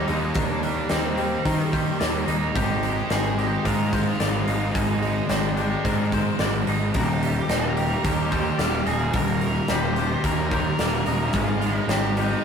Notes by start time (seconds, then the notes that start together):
Already playing: D#3 G3 A#3 D#4 G4
0.07 D#2 D#3 D#4 D#5, open hi-hat
0.34 D#2 D4 A#4, kick, open hi-hat
0.63 G3, open hi-hat
0.89 D#2 D#3 C4 D#4 G4, snare, open hi-hat
1.16 G3 A#3 G4, open hi-hat
1.45 D#3 D#4 A#4, kick, open hi-hat
1.72 G3 A#3 C5, kick, open hi-hat
1.99 D#2 G3 A#3 D5, snare, open hi-hat
2.27 D#2 D#3 D#4 D#5, open hi-hat
2.55 G#1 G#2 G4, kick, open hi-hat
2.83 G#3, open hi-hat
3.10 G#1 D#3 D#4 G4 G#4, snare, open hi-hat
3.37 G#3 C4 G4, open hi-hat
3.64 G#2 D#3 D#4 F4 A#4, kick, open hi-hat
3.92 G#3 C4 C5, kick, open hi-hat
4.18 G#1 G#3 C4 D5, snare, open hi-hat
4.46 G#1 D#3 D#4 D#5, open hi-hat
4.71 G#1 G#2 D#4 G#4, kick, open hi-hat
5.01 G#3 D#4, open hi-hat
5.27 G#1 D#3 D4 D#4 G4, snare, open hi-hat
5.57 G#3 C4 G4, open hi-hat
5.85 G#2 D#3 D#4 A#4, kick, open hi-hat
6.12 G#3 C4 C5, kick, open hi-hat
6.39 G#1 G#3 C4 D5, snare, open hi-hat
6.67 G#1 D#3 D#4 D#5, open hi-hat
6.94 D#1 D#2 G4 A#4, kick, open hi-hat
7.21 G3, open hi-hat
7.49 D#1 D#3 D#4 G4 A#4, snare, open hi-hat
7.77 G3 A#3 G4, open hi-hat
8.04 D#2 D#3 D#4 G4 A#4, kick, open hi-hat
8.31 G3 A#3 C5, kick, open hi-hat
8.58 D#1 G3 A#3 D5, snare, open hi-hat
8.86 D#1 D#3 D#4 G#4 D#5, open hi-hat
9.13 D#1 D#2 A#4, kick, open hi-hat
9.41 G3, open hi-hat
9.68 D#1 D#3 D#4 G4 C5, snare, open hi-hat
9.96 G3 A#3 G4, open hi-hat
10.24 D#2 D#3 D#4 A#4, kick, open hi-hat
10.51 G3 A#3 C5, kick, open hi-hat
10.79 D#1 G3 A#3 D5, snare, open hi-hat
11.06 D#1 D#3 D#4 D#5, open hi-hat
11.33 G#1 G#2 F4 G#4, kick, open hi-hat
11.61 G#3, open hi-hat
11.80 D#4
11.88 G#1 D#3 D#4 G4, snare, open hi-hat
12.17 G#3 C4 D#4 G4, open hi-hat